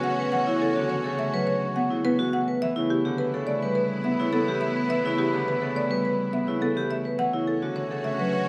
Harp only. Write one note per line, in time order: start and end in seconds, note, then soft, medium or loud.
0.00 0.47 C#3 medium
0.00 0.75 D3 medium
0.00 0.32 E3 medium
0.00 1.32 F#3 medium
0.00 1.75 B3 medium
0.06 1.18 A3 medium
0.33 0.90 E3 medium
0.48 1.04 C#3 medium
0.76 2.64 D3 medium
0.91 2.18 E3 medium
1.05 1.90 C#3 medium
1.19 2.33 A3 medium
1.33 2.64 F#3 medium
1.76 2.04 B3 medium
1.91 2.64 C#3 medium
2.05 4.04 B3 medium
2.20 2.62 E3 medium
2.34 3.47 A3 medium
2.63 3.19 E3 medium
2.77 3.33 C#3 medium
3.05 5.32 D3 medium
3.20 4.46 E3 medium
3.34 4.18 C#3 medium
3.48 4.60 A3 medium
3.62 5.88 G3 medium
4.05 4.32 B3 medium
4.19 5.03 C#3 medium
4.33 6.32 B3 medium
4.47 4.89 E3 medium
4.62 5.74 A3 medium
4.90 5.46 E3 medium
5.04 5.60 C#3 medium
5.33 7.21 D3 medium
5.47 6.74 E3 medium
5.61 6.46 C#3 medium
5.75 6.89 A3 medium
5.89 7.21 G3 medium
6.33 6.60 B3 medium
6.47 7.21 C#3 medium
6.61 7.21 B3 medium
6.76 7.17 E3 medium
6.90 8.04 A3 medium
7.18 7.75 E3 medium
7.33 7.89 C#3 medium
7.62 8.49 D3 medium
7.76 8.49 E3 medium
7.90 8.49 C#3 medium
8.05 8.49 A3 medium
8.19 8.49 F#3 medium